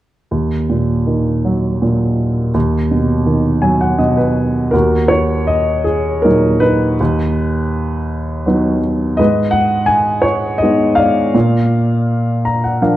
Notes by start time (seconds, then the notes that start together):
0.31 D#2
0.69 A#2
1.07 D#3
1.45 F#3
1.82 A#2
2.54 D#2
2.91 B2
3.26 D#3
3.62 F#3 G#5
3.81 F#5
3.99 B2 D#5
4.17 B4
4.71 D#2 F#4 A#4
5.08 C#5
5.47 D#5
5.84 G#4
6.22 A#2 F#3 D#4 A#4
6.60 D#4 B4
7.00 D#2
8.46 F#3 B3 D#4
9.17 G#2 B4 D#5
9.51 F#5
9.86 G#5
10.22 C#5
10.58 D#5
10.62 G#3 B3 D#4
10.95 D5 F5
11.34 A#2
12.45 A#5
12.64 F#5
12.82 F3 A#3 D4 F5